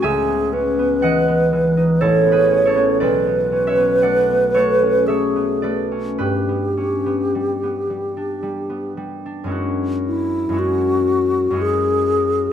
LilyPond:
<<
  \new Staff \with { instrumentName = "Alto flute" } { \time 3/4 \key fis \minor \tempo 4 = 58 gis'8 b'4. cis''4 | b'2 gis'8 r8 | g'2~ g'8 r8 | r8 e'8 fis'4 gis'4 | }
  \new Staff \with { instrumentName = "Harp" } { \time 3/4 \key fis \minor <e'' gis''>4 <dis'' fis''>4 \tuplet 3/2 { <e' a'>8 <gis' b'>8 <a' cis''>8 } | \tuplet 3/2 { <b' d''>4 <cis'' e''>8 } <d'' fis''>8 <a' cis''>8 <cis'' e''>8 <b' d''>8 | <g' b'>2. | <fis, gis cis' e' fis'>4 <fis, gis cis' e' fis'>4 <fis, gis cis' e' fis'>4 | }
  \new Staff \with { instrumentName = "Harp" } { \time 3/4 \key fis \minor <cis, cis' gis'>16 b16 cis'16 b16 e16 b16 e16 dis'16 a,,16 b16 cis'16 b16 | b,,16 b16 cis'16 b16 a16 b16 a16 cis'16 a16 b16 a16 cis'16 | g,16 b16 cis'16 b16 g16 b16 g16 d'16 g16 b16 g16 d'16 | r2. | }
>>